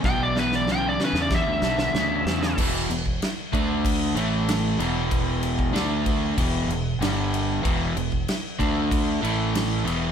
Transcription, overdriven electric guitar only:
\new Staff \with { instrumentName = "Overdriven electric guitar" } { \clef bass \time 4/4 \key e \minor \tempo 4 = 95 <e, b,>8 <e, b,>8 <e, cis>8 <e, cis>8 <e, d>8 <e, d>8 <e, cis>8 <e, cis>8 | <e, b, e>8 <e, b,>8 r8 <d a d'>4 <a, e a>4 <e, b, e>8~ | <e, b, e>4 <d a d'>4 <e, b, e>8 <e, b,>8 <g, d g>4 | <e, b, e>8 <e, b,>8 r8 <d a d'>4 <a, e a>4 <e, b, e>8 | }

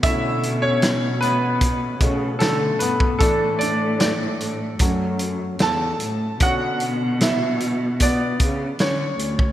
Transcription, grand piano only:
<<
  \new Staff \with { instrumentName = "Grand piano" } { \time 4/4 \key b \minor \tempo 4 = 75 <e' e''>8. <cis' cis''>8. <b b'>4. <a a'>8 <b b'>8 | a'8 <d' d''>8 <d' d''>4 r4 <a' a''>4 | <fis' fis''>4 <e' e''>4 <b d''>4 <cis' cis''>4 | }
  \new Staff \with { instrumentName = "Grand piano" } { \time 4/4 \key b \minor <d a cis'>4. r4 <b, a cis'>8 r4 | <e a d'>4. r8 <fis a cis'>2 | <d b cis'>4. r2 r8 | }
>>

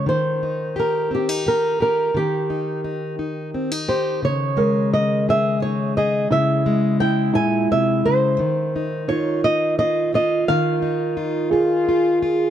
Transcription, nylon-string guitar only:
\new Staff \with { instrumentName = "Nylon-string guitar" } { \time 6/8 \key ees \mixolydian \tempo 4. = 58 c''4 bes'8 g'8 bes'8 bes'8 | g'2~ g'8 c''8 | des''4 ees''8 fes''8 des''8 ees''8 | fes''4 g''8 aes''8 fes''8 c''8~ |
c''4 des''8 ees''8 ees''8 ees''8 | f''2~ f''8 r8 | }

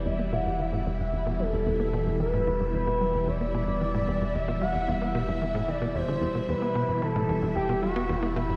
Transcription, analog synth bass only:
\new Staff \with { instrumentName = "Analog synth bass" } { \clef bass \time 4/4 \key e \minor \tempo 4 = 112 e,16 b16 b,16 g,16 e16 a,16 e,16 g,16 e,16 b,16 g16 e,16 e,16 b16 b,16 g,16 | e16 a,16 e,16 g,16 e,16 b,16 g16 e,16 e,16 b16 b,16 g,16 e16 a,16 e,16 g,16 | e,16 b,16 g16 e,16 e,16 b16 b,16 g,16 e16 a,16 e16 b,16 e,16 d16 e,16 b,16 | e,16 b16 b,16 g,16 e16 a,16 e,16 g,16 e,16 b,16 g16 b16 e,16 b16 b,16 g,16 | }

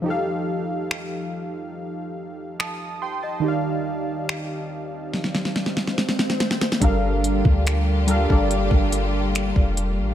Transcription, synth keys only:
\new Staff \with { instrumentName = "Synth keys" } { \time 4/4 \key g \minor \tempo 4 = 71 << { r2. <a'' ees'''>8 <g'' c'''>16 <ees'' a''>16~ | <ees'' a''>16 r2. r8. | r1 | } \\ { <f ees' g' a' f''>1 | <ees ees' g' d'' f''>1 | <g d' a' bes' f''>4~ <g d' a' bes' f''>16 r16 <g d' a' bes' f''>16 <g d' a' bes' d''>4. r8. | } >> }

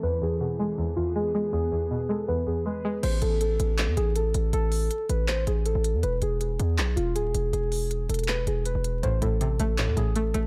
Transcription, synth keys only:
\new Staff \with { instrumentName = "Synth keys" } { \time 4/4 \key a \minor \tempo 4 = 160 b'8 gis'8 gis'4. f'8 gis'4 | gis'4. a'8 b'8 gis'8 b'4 | c''8 a'8 a'4. gis'8 a'4 | a'4. b'8 c''8 gis'8 a'4 |
b'8 gis'8 gis'4. f'8 gis'4 | gis'4. a'8 b'8 gis'8 b'4 | c''8 a'8 a'4. gis'8 a'4 | }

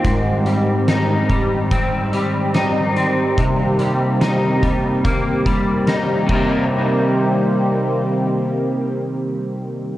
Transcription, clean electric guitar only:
\new Staff \with { instrumentName = "Clean electric guitar" } { \clef bass \time 4/4 \key c \minor \tempo 4 = 72 aes,8 g8 ees'8 g8 c'8 g8 ees'8 c'8 | c8 g8 ees'8 g8 bes8 g8 ees'8 <c g bes ees'>8~ | <c g bes ees'>1 | }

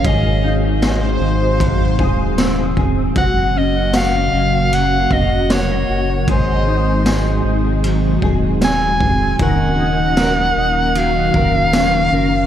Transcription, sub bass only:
\new Staff \with { instrumentName = "Sub bass" } { \clef bass \time 4/4 \key aes \mixolydian \tempo 4 = 77 aes,,4. aes,,4 ees,,4. | ges,,4. ges,,4 f,,4 ges,,8 | aes,,4. aes,,4 ees,,4. | ees,,4. ees,,4 ees,,4 ges,,8 | }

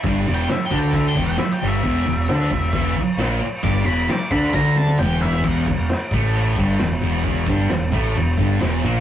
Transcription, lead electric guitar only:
\new Staff \with { instrumentName = "Lead electric guitar" } { \time 4/4 \key e \minor \tempo 4 = 133 \tuplet 3/2 { r4 g''8 e''8 g''8 g''8 e''8 g''8 g''8 e''8 g''8 e''8~ } | e''2~ e''8 r4. | d'''8 b''8 d'''8 b''8 ais''8 a''8 g''8 e''8 | r1 |
r1 | }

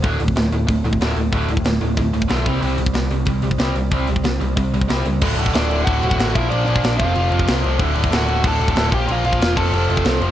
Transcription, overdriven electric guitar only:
\new Staff \with { instrumentName = "Overdriven electric guitar" } { \time 4/4 \key c \lydian \tempo 4 = 186 r1 | r1 | r1 | r1 |
r4 <d' d''>4 <fis' fis''>8. <fis' fis''>8. <e' e''>8 | <d' d''>8 <d' d''>4 <f' f''>2 r8 | r4 <fis' fis''>4 <a' a''>8. <a' a''>8. <g' g''>8 | <f' f''>8 <f' f''>4 <a' a''>2 r8 | }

